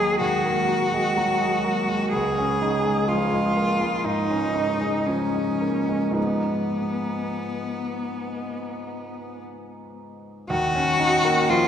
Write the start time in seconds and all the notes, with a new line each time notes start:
Already playing: D#2 F#3 G#3 A#3 F#4 G#4
0.21 D#2 F#4
0.45 A#3
0.69 F#4
0.94 G#3
1.17 F#3
1.41 G#3
1.65 A#3
1.89 G#3
2.12 C#2 G#4
2.38 C#4
2.62 D#4
2.86 G#3
3.09 F3 F4
3.33 G#3
3.57 A#3
3.81 G#3
4.05 G#2 D#4
4.30 C#4
4.55 D#4
4.81 G#3
5.07 F3 C#4
5.35 G#3
5.61 A#3
5.89 G#3
6.11 G#2 F3 G#3 B3
6.15 B3 D#4
10.50 D#2 F#4
10.75 C#4
10.99 D#4
11.25 A#3
11.50 F3 F4